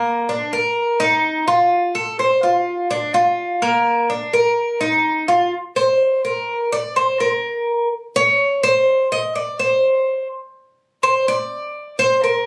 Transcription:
0, 0, Header, 1, 2, 480
1, 0, Start_track
1, 0, Tempo, 477707
1, 1717, Time_signature, 4, 2, 24, 8
1, 12522, End_track
2, 0, Start_track
2, 0, Title_t, "Cuban tres"
2, 0, Program_c, 0, 25
2, 0, Note_on_c, 0, 58, 80
2, 270, Note_off_c, 0, 58, 0
2, 291, Note_on_c, 0, 62, 68
2, 519, Note_off_c, 0, 62, 0
2, 531, Note_on_c, 0, 70, 77
2, 990, Note_off_c, 0, 70, 0
2, 1003, Note_on_c, 0, 63, 89
2, 1465, Note_off_c, 0, 63, 0
2, 1483, Note_on_c, 0, 65, 75
2, 1944, Note_off_c, 0, 65, 0
2, 1958, Note_on_c, 0, 69, 79
2, 2189, Note_off_c, 0, 69, 0
2, 2202, Note_on_c, 0, 72, 75
2, 2431, Note_off_c, 0, 72, 0
2, 2443, Note_on_c, 0, 65, 76
2, 2903, Note_off_c, 0, 65, 0
2, 2919, Note_on_c, 0, 62, 84
2, 3148, Note_off_c, 0, 62, 0
2, 3156, Note_on_c, 0, 65, 76
2, 3619, Note_off_c, 0, 65, 0
2, 3638, Note_on_c, 0, 58, 86
2, 4099, Note_off_c, 0, 58, 0
2, 4116, Note_on_c, 0, 62, 67
2, 4346, Note_off_c, 0, 62, 0
2, 4355, Note_on_c, 0, 70, 74
2, 4817, Note_off_c, 0, 70, 0
2, 4829, Note_on_c, 0, 63, 80
2, 5294, Note_off_c, 0, 63, 0
2, 5307, Note_on_c, 0, 65, 70
2, 5541, Note_off_c, 0, 65, 0
2, 5790, Note_on_c, 0, 72, 84
2, 6236, Note_off_c, 0, 72, 0
2, 6276, Note_on_c, 0, 70, 77
2, 6720, Note_off_c, 0, 70, 0
2, 6757, Note_on_c, 0, 74, 103
2, 6987, Note_off_c, 0, 74, 0
2, 6996, Note_on_c, 0, 72, 80
2, 7226, Note_off_c, 0, 72, 0
2, 7238, Note_on_c, 0, 70, 80
2, 7915, Note_off_c, 0, 70, 0
2, 8199, Note_on_c, 0, 73, 94
2, 8643, Note_off_c, 0, 73, 0
2, 8675, Note_on_c, 0, 72, 95
2, 9122, Note_off_c, 0, 72, 0
2, 9163, Note_on_c, 0, 75, 100
2, 9393, Note_off_c, 0, 75, 0
2, 9400, Note_on_c, 0, 74, 78
2, 9631, Note_off_c, 0, 74, 0
2, 9640, Note_on_c, 0, 72, 82
2, 10320, Note_off_c, 0, 72, 0
2, 11085, Note_on_c, 0, 72, 88
2, 11316, Note_off_c, 0, 72, 0
2, 11336, Note_on_c, 0, 74, 100
2, 12010, Note_off_c, 0, 74, 0
2, 12047, Note_on_c, 0, 72, 85
2, 12279, Note_off_c, 0, 72, 0
2, 12295, Note_on_c, 0, 70, 76
2, 12522, Note_off_c, 0, 70, 0
2, 12522, End_track
0, 0, End_of_file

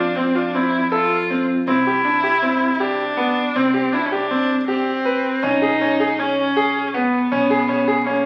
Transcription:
0, 0, Header, 1, 4, 480
1, 0, Start_track
1, 0, Tempo, 375940
1, 2146, Time_signature, 5, 2, 24, 8
1, 10541, End_track
2, 0, Start_track
2, 0, Title_t, "Grand piano"
2, 0, Program_c, 0, 0
2, 213, Note_on_c, 0, 60, 80
2, 362, Note_off_c, 0, 60, 0
2, 448, Note_on_c, 0, 65, 75
2, 599, Note_off_c, 0, 65, 0
2, 695, Note_on_c, 0, 60, 76
2, 990, Note_off_c, 0, 60, 0
2, 1172, Note_on_c, 0, 69, 85
2, 1467, Note_off_c, 0, 69, 0
2, 1663, Note_on_c, 0, 60, 78
2, 1955, Note_off_c, 0, 60, 0
2, 2140, Note_on_c, 0, 60, 90
2, 2288, Note_off_c, 0, 60, 0
2, 2385, Note_on_c, 0, 67, 72
2, 2531, Note_off_c, 0, 67, 0
2, 2611, Note_on_c, 0, 62, 76
2, 2761, Note_off_c, 0, 62, 0
2, 2852, Note_on_c, 0, 67, 76
2, 3002, Note_off_c, 0, 67, 0
2, 3093, Note_on_c, 0, 60, 82
2, 3388, Note_off_c, 0, 60, 0
2, 3575, Note_on_c, 0, 67, 85
2, 3869, Note_off_c, 0, 67, 0
2, 4049, Note_on_c, 0, 59, 85
2, 4345, Note_off_c, 0, 59, 0
2, 4541, Note_on_c, 0, 60, 97
2, 4688, Note_off_c, 0, 60, 0
2, 4773, Note_on_c, 0, 67, 72
2, 4922, Note_off_c, 0, 67, 0
2, 5011, Note_on_c, 0, 62, 80
2, 5161, Note_off_c, 0, 62, 0
2, 5261, Note_on_c, 0, 67, 77
2, 5408, Note_off_c, 0, 67, 0
2, 5499, Note_on_c, 0, 60, 81
2, 5792, Note_off_c, 0, 60, 0
2, 5976, Note_on_c, 0, 67, 84
2, 6270, Note_off_c, 0, 67, 0
2, 6451, Note_on_c, 0, 71, 85
2, 6746, Note_off_c, 0, 71, 0
2, 6930, Note_on_c, 0, 61, 97
2, 7080, Note_off_c, 0, 61, 0
2, 7175, Note_on_c, 0, 68, 76
2, 7323, Note_off_c, 0, 68, 0
2, 7420, Note_on_c, 0, 61, 82
2, 7567, Note_off_c, 0, 61, 0
2, 7659, Note_on_c, 0, 68, 76
2, 7806, Note_off_c, 0, 68, 0
2, 7902, Note_on_c, 0, 61, 81
2, 8194, Note_off_c, 0, 61, 0
2, 8381, Note_on_c, 0, 68, 86
2, 8673, Note_off_c, 0, 68, 0
2, 8864, Note_on_c, 0, 59, 88
2, 9155, Note_off_c, 0, 59, 0
2, 9341, Note_on_c, 0, 61, 98
2, 9488, Note_off_c, 0, 61, 0
2, 9579, Note_on_c, 0, 68, 76
2, 9726, Note_off_c, 0, 68, 0
2, 9816, Note_on_c, 0, 61, 81
2, 9964, Note_off_c, 0, 61, 0
2, 10057, Note_on_c, 0, 68, 79
2, 10205, Note_off_c, 0, 68, 0
2, 10294, Note_on_c, 0, 61, 85
2, 10541, Note_off_c, 0, 61, 0
2, 10541, End_track
3, 0, Start_track
3, 0, Title_t, "Viola"
3, 0, Program_c, 1, 41
3, 0, Note_on_c, 1, 62, 99
3, 195, Note_on_c, 1, 60, 91
3, 214, Note_off_c, 1, 62, 0
3, 459, Note_on_c, 1, 62, 90
3, 478, Note_off_c, 1, 60, 0
3, 705, Note_on_c, 1, 64, 90
3, 724, Note_off_c, 1, 62, 0
3, 1163, Note_off_c, 1, 64, 0
3, 1171, Note_on_c, 1, 65, 103
3, 1847, Note_off_c, 1, 65, 0
3, 2134, Note_on_c, 1, 64, 104
3, 3510, Note_off_c, 1, 64, 0
3, 3510, Note_on_c, 1, 64, 71
3, 3583, Note_on_c, 1, 62, 100
3, 3603, Note_off_c, 1, 64, 0
3, 4561, Note_on_c, 1, 60, 97
3, 4580, Note_off_c, 1, 62, 0
3, 5029, Note_on_c, 1, 64, 91
3, 5049, Note_off_c, 1, 60, 0
3, 5182, Note_on_c, 1, 61, 67
3, 5201, Note_off_c, 1, 64, 0
3, 5264, Note_on_c, 1, 62, 97
3, 5283, Note_off_c, 1, 61, 0
3, 5960, Note_off_c, 1, 62, 0
3, 5968, Note_on_c, 1, 60, 99
3, 6943, Note_on_c, 1, 63, 105
3, 6962, Note_off_c, 1, 60, 0
3, 7907, Note_on_c, 1, 61, 88
3, 7926, Note_off_c, 1, 63, 0
3, 8768, Note_off_c, 1, 61, 0
3, 8768, Note_on_c, 1, 61, 68
3, 8861, Note_on_c, 1, 59, 92
3, 8880, Note_off_c, 1, 61, 0
3, 10272, Note_on_c, 1, 58, 80
3, 10291, Note_off_c, 1, 59, 0
3, 10541, Note_off_c, 1, 58, 0
3, 10541, End_track
4, 0, Start_track
4, 0, Title_t, "Upright bass"
4, 0, Program_c, 2, 32
4, 0, Note_on_c, 2, 41, 78
4, 2099, Note_off_c, 2, 41, 0
4, 2144, Note_on_c, 2, 36, 79
4, 4496, Note_off_c, 2, 36, 0
4, 4537, Note_on_c, 2, 36, 79
4, 6892, Note_off_c, 2, 36, 0
4, 6937, Note_on_c, 2, 35, 85
4, 9292, Note_off_c, 2, 35, 0
4, 9344, Note_on_c, 2, 35, 81
4, 10541, Note_off_c, 2, 35, 0
4, 10541, End_track
0, 0, End_of_file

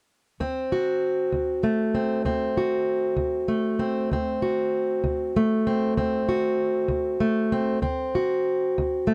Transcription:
0, 0, Header, 1, 2, 480
1, 0, Start_track
1, 0, Tempo, 618620
1, 308, Time_signature, 12, 3, 24, 8
1, 7093, End_track
2, 0, Start_track
2, 0, Title_t, "Steel-string acoustic guitar"
2, 0, Program_c, 0, 25
2, 312, Note_on_c, 0, 38, 70
2, 315, Note_on_c, 0, 60, 55
2, 560, Note_on_c, 0, 66, 54
2, 742, Note_off_c, 0, 38, 0
2, 1027, Note_on_c, 0, 38, 58
2, 1268, Note_on_c, 0, 57, 50
2, 1460, Note_off_c, 0, 38, 0
2, 1507, Note_off_c, 0, 60, 0
2, 1510, Note_on_c, 0, 60, 52
2, 1746, Note_on_c, 0, 38, 59
2, 1748, Note_off_c, 0, 60, 0
2, 1751, Note_on_c, 0, 60, 51
2, 1994, Note_off_c, 0, 66, 0
2, 1997, Note_on_c, 0, 66, 51
2, 2179, Note_off_c, 0, 38, 0
2, 2456, Note_on_c, 0, 38, 65
2, 2699, Note_off_c, 0, 57, 0
2, 2702, Note_on_c, 0, 57, 54
2, 2894, Note_off_c, 0, 38, 0
2, 2941, Note_off_c, 0, 60, 0
2, 2944, Note_on_c, 0, 60, 59
2, 3193, Note_on_c, 0, 38, 61
2, 3200, Note_off_c, 0, 60, 0
2, 3203, Note_on_c, 0, 60, 55
2, 3226, Note_off_c, 0, 66, 0
2, 3432, Note_on_c, 0, 66, 53
2, 3622, Note_off_c, 0, 38, 0
2, 3908, Note_on_c, 0, 38, 68
2, 4159, Note_off_c, 0, 57, 0
2, 4163, Note_on_c, 0, 57, 58
2, 4340, Note_off_c, 0, 38, 0
2, 4396, Note_off_c, 0, 60, 0
2, 4399, Note_on_c, 0, 60, 56
2, 4633, Note_off_c, 0, 60, 0
2, 4634, Note_on_c, 0, 38, 63
2, 4636, Note_on_c, 0, 60, 51
2, 4868, Note_off_c, 0, 66, 0
2, 4877, Note_on_c, 0, 66, 54
2, 5064, Note_off_c, 0, 38, 0
2, 5341, Note_on_c, 0, 38, 70
2, 5580, Note_off_c, 0, 57, 0
2, 5589, Note_on_c, 0, 57, 55
2, 5776, Note_off_c, 0, 38, 0
2, 5828, Note_off_c, 0, 60, 0
2, 5837, Note_on_c, 0, 60, 62
2, 6040, Note_off_c, 0, 57, 0
2, 6044, Note_off_c, 0, 60, 0
2, 6044, Note_off_c, 0, 66, 0
2, 6068, Note_on_c, 0, 38, 64
2, 6071, Note_on_c, 0, 60, 53
2, 6325, Note_on_c, 0, 66, 53
2, 6500, Note_off_c, 0, 38, 0
2, 6812, Note_on_c, 0, 38, 69
2, 7039, Note_on_c, 0, 57, 56
2, 7093, Note_off_c, 0, 38, 0
2, 7093, Note_off_c, 0, 57, 0
2, 7093, Note_off_c, 0, 60, 0
2, 7093, Note_off_c, 0, 66, 0
2, 7093, End_track
0, 0, End_of_file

